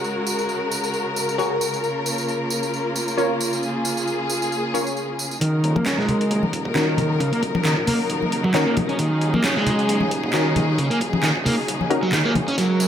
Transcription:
Already playing: string section C#3 G#3 F#4 A#4
0.04 tambourine
0.27 tambourine
0.39 tambourine
0.49 tambourine
0.71 tambourine
0.84 tambourine
0.94 tambourine
1.16 tambourine
1.29 tambourine
1.38 synth stab F#4 G#4 A#4 C#5, tambourine
1.61 tambourine
1.74 tambourine
1.83 string section A#3 F4, tambourine
2.06 tambourine
2.18 tambourine
2.28 tambourine
2.50 tambourine
2.63 tambourine
2.74 tambourine
2.96 tambourine
3.08 tambourine
3.17 synth stab C#4 F4 A#4 C#5, tambourine
3.41 tambourine
3.53 tambourine
3.62 string section G#4, tambourine
3.85 tambourine
3.97 tambourine
4.07 tambourine
4.30 tambourine
4.42 tambourine
4.52 tambourine
4.74 synth stab C#4 F4 A#4 C#5, tambourine
4.87 tambourine
4.97 tambourine
5.19 tambourine
5.31 tambourine
5.40 string section C#3 F#3 D#4 A#4, overdriven electric guitar D#3, kick, closed hi-hat
5.63 detuned saw bass D#1, closed hi-hat
5.76 overdriven electric guitar A#3, kick, high conga
5.86 overdriven electric guitar C#4, snare, clap, closed hi-hat
5.98 detuned saw bass A#1, overdriven electric guitar G#3, snare
6.09 closed hi-hat, low conga
6.21 closed hi-hat
6.30 detuned saw bass D#1, closed hi-hat
6.43 high conga
6.53 kick, closed hi-hat
6.65 detuned saw bass D#1, kick
6.75 overdriven electric guitar D#3, synth stab C#4 D#4 F#4 A#4, snare, clap, closed hi-hat
6.97 detuned saw bass D#1, closed hi-hat, high conga, low conga
7.20 overdriven electric guitar C#3, kick, closed hi-hat
7.32 overdriven electric guitar A#3, closed hi-hat
7.43 detuned saw bass D#1, kick, closed hi-hat
7.55 kick, high conga
7.65 overdriven electric guitar D#3, snare, clap, closed hi-hat
7.77 detuned saw bass A#1, kick
7.87 overdriven electric guitar A#3, open hi-hat, low conga
8.10 detuned saw bass D#1, closed hi-hat
8.22 high conga
8.32 closed hi-hat
8.44 detuned saw bass D#1, overdriven electric guitar F#3, kick
8.54 overdriven electric guitar D#3, synth stab C#4 D#4 F#4 A#4, snare, clap, closed hi-hat
8.67 overdriven electric guitar A#3
8.77 detuned saw bass D#1, closed hi-hat, high conga, low conga
8.89 overdriven electric guitar C#4, closed hi-hat
8.99 overdriven electric guitar D#3, string section G#4, kick, closed hi-hat
9.21 detuned saw bass D#1, closed hi-hat
9.34 overdriven electric guitar A#3, kick, high conga
9.44 overdriven electric guitar C#4, snare, clap, closed hi-hat
9.56 detuned saw bass A#1, overdriven electric guitar G#3, snare
9.67 closed hi-hat, low conga
9.79 closed hi-hat
9.89 detuned saw bass D#1, closed hi-hat
10.01 high conga
10.11 kick, closed hi-hat
10.23 detuned saw bass D#1, kick
10.33 overdriven electric guitar D#3, synth stab C#4 D#4 F#4 A#4, snare, clap, closed hi-hat
10.56 detuned saw bass D#1, closed hi-hat, high conga, low conga
10.78 overdriven electric guitar C#3, kick, closed hi-hat
10.90 overdriven electric guitar A#3, closed hi-hat
11.01 detuned saw bass D#1, kick, closed hi-hat
11.13 kick, high conga
11.23 overdriven electric guitar D#3, snare, clap, closed hi-hat
11.36 detuned saw bass A#1, kick
11.45 overdriven electric guitar A#3, open hi-hat, low conga
11.68 detuned saw bass D#1, closed hi-hat
11.81 high conga
11.90 synth stab C#4 D#4 F#4 A#4, closed hi-hat
12.03 detuned saw bass D#1, overdriven electric guitar F#3, kick
12.12 overdriven electric guitar D#3, snare, clap, closed hi-hat
12.25 overdriven electric guitar A#3
12.35 detuned saw bass F#1, closed hi-hat, high conga, low conga
12.48 overdriven electric guitar C#4, closed hi-hat
12.58 overdriven electric guitar F#3, string section F#3 G#3 A#4, snare, closed hi-hat, tambourine
12.80 detuned saw bass F#1, closed hi-hat, tambourine

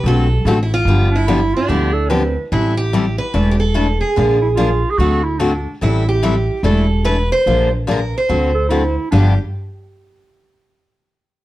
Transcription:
0.03 upright bass B1, steel-string acoustic guitar D3 A3 C4 F#4 A4
0.08 steel-string acoustic guitar A4
0.45 upright bass A1, steel-string acoustic guitar D3 A3 C4 F#4 G4 A4
0.63 steel-string acoustic guitar E4
0.74 steel-string acoustic guitar F4
0.85 upright bass G1, steel-string acoustic guitar D3 F3 B3 D4 G4
1.10 clarinet D4
1.15 steel-string acoustic guitar E4
1.27 steel-string acoustic guitar D3 F3 B3 D4 G4, clarinet E4
1.53 steel-string acoustic guitar D4, clarinet F4
1.68 upright bass D2, steel-string acoustic guitar D3 F3 B3 D4 G4, clarinet G4
1.93 clarinet A4
2.10 steel-string acoustic guitar D3 F3 B3 C4 D4 G4, clarinet B4
2.52 upright bass A1, steel-string acoustic guitar E3 G3 C4 E4 A4
2.77 steel-string acoustic guitar G4
2.93 steel-string acoustic guitar E3 G3 C4 E4 A4
3.18 steel-string acoustic guitar B4
3.34 upright bass E1, steel-string acoustic guitar E3 A3 D4 E4 A4
3.51 steel-string acoustic guitar G4
3.60 steel-string acoustic guitar A4
3.74 steel-string acoustic guitar E3 A3 D4 E4 A4
4.00 steel-string acoustic guitar G#4
4.16 upright bass A#1, steel-string acoustic guitar D3 F3 A#3 D4 G#4
4.42 clarinet E4
4.55 steel-string acoustic guitar D3 F3 A#3 D4 G#4, clarinet F4
4.91 clarinet G#4
4.98 upright bass D2, steel-string acoustic guitar D3 A3 C4 F#4 A4, clarinet F#4
5.24 clarinet E4
5.39 steel-string acoustic guitar D3 A3 C4 F#4 A4, clarinet D4
5.81 upright bass A1, steel-string acoustic guitar E3 G3 C4 E4 A4
6.08 steel-string acoustic guitar G4
6.23 steel-string acoustic guitar E3 G3 C4 E4 A4
6.63 upright bass E1, steel-string acoustic guitar E3 A3 D4 E4 A4
7.05 steel-string acoustic guitar E3 A3 D4 E4 A4 B4
7.32 steel-string acoustic guitar C5
7.46 upright bass A#1, steel-string acoustic guitar D3 F3 A#3 D4 G#4
7.87 steel-string acoustic guitar D3 F3 A#3 D4 G#4
7.91 steel-string acoustic guitar A#4
8.18 steel-string acoustic guitar C5
8.29 upright bass D2, steel-string acoustic guitar D3 A3 C4 F#4 A4
8.54 clarinet A4
8.69 steel-string acoustic guitar D3 A3 C4 F#4 A4, clarinet E4
9.11 upright bass G1, steel-string acoustic guitar G2 D3 F3 B3 D4 G4, clarinet D4
9.15 steel-string acoustic guitar G4

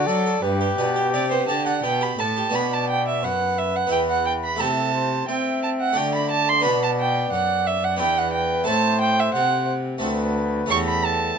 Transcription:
Already playing: violin D5
0.07 cello F#3, harpsichord F#3 D4, trumpet A4
0.26 harpsichord A4
0.42 cello G2, harpsichord G2, trumpet G4, violin B4
0.61 harpsichord G4
0.78 cello B2, harpsichord B2 D4
0.96 harpsichord G4
1.13 cello C3, harpsichord C3 D4, violin D5
1.31 harpsichord B3, violin C5
1.48 cello D3, harpsichord D3 G4, violin A5
1.66 harpsichord D4, violin F#5
1.84 harpsichord B2 B3, cello B2, violin G5
2.01 harpsichord G4, violin B5
2.19 harpsichord A2 A4, cello A2, violin A5
2.37 harpsichord G4
2.50 harpsichord B3 D4 F#4
2.54 cello B2, harpsichord B2, trumpet D5, violin B5
2.73 violin A5
2.90 violin G5
3.08 violin E5
3.23 cello F#2, harpsichord F#2, trumpet B4, violin F#5
3.58 violin E5
3.76 violin F#5
3.87 harpsichord B3 E4, trumpet B4
3.92 cello E2, harpsichord E2, violin G5
4.10 violin F#5
4.26 violin G5
4.44 violin B5
4.56 cello C3, harpsichord A3 E4 G4, trumpet A4, violin A5
4.61 harpsichord C3
4.94 trumpet C5
5.27 cello C4, harpsichord C4, trumpet E5, violin G5
5.63 violin A5
5.81 violin F#5
5.93 harpsichord A3 D4 F#4, trumpet D5
5.97 cello D3, harpsichord D3, violin G5
6.15 violin B5
6.31 violin A5
6.49 violin C6
6.61 harpsichord B3 D4 F#4
6.65 cello B2, harpsichord B2, violin B5
6.83 violin A5
7.00 violin G5
7.33 cello F#2, harpsichord F#2, violin F#5
7.67 violin E5
7.84 violin F#5
7.96 cello E2, harpsichord B3 D4 E4, trumpet B4, violin G5
8.01 harpsichord E2
8.18 violin F#5
8.33 violin G5
8.64 cello A2, harpsichord A3 C4 E4, trumpet C5, violin A5
8.68 harpsichord A2
9.01 violin G5
9.19 violin E5
9.34 cello C3, harpsichord C3, violin F#5
9.98 harpsichord A3 C4 F#4
10.02 cello D2, harpsichord D2, trumpet B4
10.66 harpsichord A3 C#4 G4
10.70 cello E2, harpsichord E2, trumpet A4, violin C#6
10.88 violin B5
11.05 violin A5

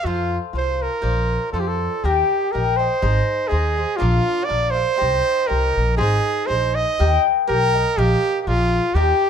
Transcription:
0.04 upright bass F2, cavaquinho F4 A4 C5 F5, trumpet F4
0.53 upright bass C2, cavaquinho F4 A4 C5 F5
0.57 trumpet C5
0.82 trumpet A#4
1.02 upright bass A#1, cavaquinho F4 A#4 C5 D5
1.52 upright bass F2, cavaquinho F4 C5 D5, trumpet A4
1.60 trumpet G4
1.68 trumpet A4
2.04 upright bass D#2, cavaquinho G4 A#4 D#5 G5, trumpet G4
2.52 upright bass A#1, cavaquinho G4 A#4 D#5 G5, trumpet A#4
2.77 cavaquinho A#4 D#5 G5, trumpet C5
3.02 upright bass G#1, cavaquinho D#4 G#4 C5 D#5
3.48 upright bass D#2, cavaquinho D#4 G#4 C5 D#5, trumpet G#4
3.77 cavaquinho G#4 C5 D#5
3.97 cavaquinho D4 A#4 D5 F5, trumpet F4
4.02 upright bass A#1
4.45 cavaquinho D4, trumpet D5
4.49 upright bass A#1, cavaquinho A#4 D5 F5
4.71 trumpet C5, cavaquinho F5
4.75 cavaquinho A#4 D5
4.96 cavaquinho D#4 G4 C5 D#5
5.02 upright bass C2
5.47 upright bass C2, cavaquinho D#4 G4 C5 D#5, trumpet A#4
5.77 upright bass A#1
5.97 upright bass G#1, cavaquinho D#4 G#4 C5 D#5, trumpet G#4
6.47 upright bass A#1, cavaquinho D#4 G#4 C5 D#5, trumpet C5
6.75 trumpet D#5
6.99 upright bass D#2, cavaquinho G4 A#4 D#5 G5
7.48 upright bass B1, cavaquinho G4 A#4 D#5 G5, trumpet A#4
7.74 cavaquinho A#4 D#5 G5
7.97 upright bass A#1, trumpet G4, cavaquinho A#4 D#5 F5
8.41 trumpet G4
8.47 upright bass A#1, trumpet F4, cavaquinho G#4 A#4 D5 F5
8.94 upright bass D#2, trumpet G4, cavaquinho G4 A#4 D#5 G5

